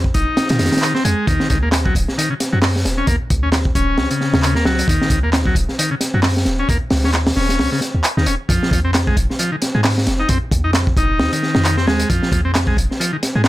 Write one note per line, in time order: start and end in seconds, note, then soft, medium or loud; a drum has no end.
0.00 0.11 F2 medium
0.04 kick medium
0.14 0.24 F1 loud
0.14 0.49 D#4 medium
0.14 kick loud
0.14 closed hi-hat medium
0.37 snare loud
0.37 closed hi-hat medium
0.49 0.61 A#2 loud
0.49 0.94 D#3 medium
0.49 snare loud
0.49 closed hi-hat medium
0.59 0.69 F2 medium
0.59 snare loud
0.59 closed hi-hat medium
0.66 snare medium
0.66 closed hi-hat medium
0.72 snare medium
0.72 closed hi-hat medium
0.77 snare medium
0.77 closed hi-hat medium
0.82 clap loud
0.82 closed hi-hat medium
0.94 1.04 C4 loud
0.94 snare soft
1.05 1.14 F2 loud
1.05 1.26 G#3 medium
1.05 closed hi-hat medium
1.27 1.37 D#2 loud
1.27 1.48 D#3 medium
1.27 kick loud
1.27 closed hi-hat medium
1.40 snare medium
1.50 1.65 C#2 medium
1.50 1.58 D#3 medium
1.50 kick medium
1.50 closed hi-hat medium
1.63 1.91 D#2 medium
1.63 1.69 A#3 medium
1.72 snare loud
1.72 clap loud
1.72 closed hi-hat medium
1.85 1.95 F#3 medium
1.85 kick loud
1.95 2.05 D#1 loud
1.95 kick loud
1.95 closed hi-hat medium
2.08 snare soft
2.18 2.29 D#3 medium
2.18 closed hi-hat medium
2.30 2.34 C#3 medium
2.40 snare soft
2.40 closed hi-hat medium
2.52 2.87 F#2 medium
2.52 2.59 F#3 medium
2.62 snare loud
2.62 clap loud
2.62 open hi-hat medium
2.76 snare medium
2.85 3.03 D#1 loud
2.85 snare medium
2.85 closed hi-hat medium
2.98 3.07 C#4 medium
3.07 3.17 D#2 loud
3.07 3.16 A#3 medium
3.07 kick loud
3.07 closed hi-hat medium
3.30 3.45 C#2 medium
3.30 kick medium
3.30 closed hi-hat medium
3.43 3.71 D#2 medium
3.43 3.50 C#4 medium
3.52 snare loud
3.52 clap medium
3.52 closed hi-hat medium
3.65 kick medium
3.75 4.00 D#1 loud
3.75 4.09 C#4 medium
3.75 kick loud
3.75 closed hi-hat medium
3.98 4.08 C#2 medium
3.98 snare loud
4.11 4.55 C#3 medium
4.11 closed hi-hat medium
4.21 snare soft
4.33 4.67 D#2 medium
4.33 snare loud
4.43 clap loud
4.43 closed hi-hat medium
4.55 4.65 A#3 loud
4.55 snare soft
4.65 4.83 C#2 medium
4.65 4.87 F#3 medium
4.65 snare loud
4.79 closed hi-hat medium
4.88 4.98 D#2 loud
4.88 5.09 D#3 medium
4.88 kick loud
4.88 closed hi-hat medium
5.02 snare medium
5.10 5.25 C#2 medium
5.10 5.19 D#3 medium
5.10 kick medium
5.10 closed hi-hat medium
5.23 5.52 D#2 medium
5.23 5.30 A#3 medium
5.33 snare loud
5.33 clap loud
5.33 closed hi-hat medium
5.46 5.55 F#3 medium
5.46 kick loud
5.55 5.65 D#1 loud
5.55 kick medium
5.55 closed hi-hat medium
5.69 snare soft
5.78 5.90 D#3 medium
5.78 closed hi-hat loud
5.91 5.95 C#3 medium
6.01 snare soft
6.01 closed hi-hat medium
6.14 6.48 F#2 medium
6.14 6.20 F#3 medium
6.23 snare loud
6.23 clap loud
6.23 open hi-hat medium
6.37 snare medium
6.45 6.64 D#1 loud
6.45 snare medium
6.45 closed hi-hat medium
6.59 6.68 C#4 medium
6.69 6.78 D#2 loud
6.69 6.77 A#3 medium
6.69 kick loud
6.69 closed hi-hat medium
6.90 7.06 C#2 medium
6.90 snare loud
6.90 open hi-hat medium
7.04 7.32 D#2 medium
7.04 7.11 C#4 medium
7.04 snare soft
7.13 snare soft
7.13 clap loud
7.13 closed hi-hat medium
7.27 snare loud
7.27 open hi-hat medium
7.36 7.61 D#1 loud
7.36 7.70 C#4 medium
7.36 snare soft
7.49 snare soft
7.49 closed hi-hat medium
7.59 7.69 C#2 medium
7.59 snare loud
7.59 open hi-hat medium
7.72 7.81 C#3 medium
7.72 snare soft
7.81 snare soft
7.81 closed hi-hat medium
7.94 8.02 D#2 medium
8.04 clap loud
8.04 closed hi-hat medium
8.17 8.28 D#2 loud
8.17 8.26 D#3 medium
8.17 snare soft
8.26 8.36 D#1 medium
8.26 8.35 C#4 medium
8.26 closed hi-hat medium
8.49 8.59 F2 medium
8.49 8.70 F3 medium
8.49 kick loud
8.49 closed hi-hat medium
8.63 snare medium
8.71 8.86 D#2 medium
8.71 8.80 F3 medium
8.71 kick medium
8.71 closed hi-hat medium
8.85 9.13 F2 medium
8.85 8.91 C4 medium
8.94 snare loud
8.94 clap loud
8.94 closed hi-hat medium
9.07 9.16 G#3 medium
9.07 kick loud
9.17 9.26 F1 loud
9.17 kick medium
9.17 closed hi-hat medium
9.30 snare soft
9.39 9.51 F3 medium
9.39 closed hi-hat medium
9.52 9.56 D#3 medium
9.62 snare soft
9.62 closed hi-hat medium
9.75 10.09 G#2 medium
9.75 9.81 G#3 medium
9.83 snare loud
9.83 clap loud
9.83 open hi-hat medium
9.98 snare medium
10.07 10.25 F1 loud
10.07 snare medium
10.07 closed hi-hat medium
10.20 10.29 D#4 medium
10.29 10.39 F2 loud
10.29 10.38 C4 medium
10.29 kick loud
10.29 closed hi-hat medium
10.51 10.67 D#2 medium
10.51 kick medium
10.51 closed hi-hat medium
10.64 10.93 F2 medium
10.64 10.71 D#4 medium
10.74 snare loud
10.74 clap loud
10.74 closed hi-hat medium
10.87 kick medium
10.97 11.21 F1 loud
10.97 11.31 D#4 medium
10.97 kick loud
10.97 closed hi-hat medium
11.20 11.29 D#2 medium
11.20 snare loud
11.32 11.76 D#3 medium
11.32 closed hi-hat medium
11.43 snare soft
11.55 11.89 F2 loud
11.55 snare loud
11.65 clap loud
11.65 closed hi-hat medium
11.77 11.86 C4 loud
11.77 snare soft
11.87 12.05 D#2 medium
11.87 12.09 G#3 medium
11.87 snare loud
12.00 closed hi-hat medium
12.09 12.20 F2 loud
12.09 12.31 F3 medium
12.09 kick loud
12.09 closed hi-hat medium
12.23 snare medium
12.32 12.47 D#2 medium
12.32 12.41 F3 medium
12.32 kick loud
12.32 closed hi-hat medium
12.45 12.74 F2 medium
12.45 12.52 C4 medium
12.55 snare loud
12.55 clap loud
12.55 closed hi-hat medium
12.67 12.77 G#3 medium
12.67 kick loud
12.77 12.87 F1 loud
12.77 kick medium
12.77 closed hi-hat medium
12.91 snare soft
13.00 13.12 F3 medium
13.00 closed hi-hat medium
13.13 13.17 D#3 medium
13.23 snare soft
13.23 closed hi-hat medium
13.35 13.48 G#2 medium
13.35 13.42 G#3 medium
13.44 snare loud
13.44 clap loud
13.44 open hi-hat medium